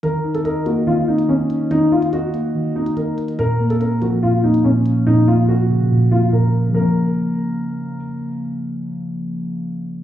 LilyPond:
<<
  \new Staff \with { instrumentName = "Grand piano" } { \time 4/4 \key bes \minor \tempo 4 = 143 bes'8. a'16 bes'8 ges'8 f'8 ees'8 des'4 | ees'8 f'8 ges'4. ees'8 bes'8 r8 | bes'8. a'16 bes'8 ges'8 f'8 ees'8 des'4 | ees'8 f'8 ges'4. f'8 bes'8 r8 |
bes'2. r4 | r1 | }
  \new Staff \with { instrumentName = "Synth keys" } { \clef bass \time 4/4 \key bes \minor ees8 ees'8 ees''8 bes8 ees8 ees'8 ees4 | ees8 ees'8 ees''8 bes8 ees8 ees'8 ees4 | bes,8 bes8 des'8 f8 bes,8 bes8 bes,4 | bes,8 bes8 des'8 des8 bes,8 bes8 bes,4 |
<des f bes des'>1~ | <des f bes des'>1 | }
  \new DrumStaff \with { instrumentName = "Drums" } \drummode { \time 4/4 hh8. hh16 hh8 hh8 r8. hh16 r8 hh8 | hh8. hh16 hh8 hh8 r8. hh16 hh8 hh16 hh16 | hh8. hh16 hh8 hh8 r8. hh16 r8 hh8 | r4 r4 r4 r4 |
r4 r4 r4 r4 | r4 r4 r4 r4 | }
>>